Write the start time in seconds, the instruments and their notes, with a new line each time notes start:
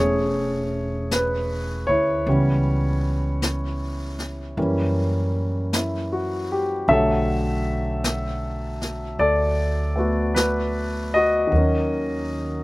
Already playing: upright bass E1, grand piano E3 G#3 A3 B3 C#4 G#4 C#5
1.11 grand piano B4, brush sweep, snare, hi-hat pedal
1.87 upright bass D2, grand piano E4 C#5
2.27 upright bass C#2, grand piano E3 G3 B3 C#4, brush sweep
3.42 brush sweep, snare, hi-hat pedal
4.19 snare
4.57 upright bass F#2, grand piano E3 G3 A#3 C#4, brush sweep
5.73 grand piano E4, brush sweep, snare, hi-hat pedal
6.13 grand piano F#4
6.52 grand piano G4
6.88 upright bass B1, grand piano D3 F#3 A4 E5, brush sweep
6.93 grand piano A3
8.04 brush sweep, snare, hi-hat pedal
8.81 snare
9.19 upright bass D2, grand piano A4 D5, brush sweep
9.96 grand piano A3 B3 F#4
10.35 grand piano B4, brush sweep, snare, hi-hat pedal
11.14 grand piano F#4 D#5
11.47 grand piano D#3 F#3
11.52 upright bass D#2, grand piano A#3, brush sweep
11.58 grand piano C#4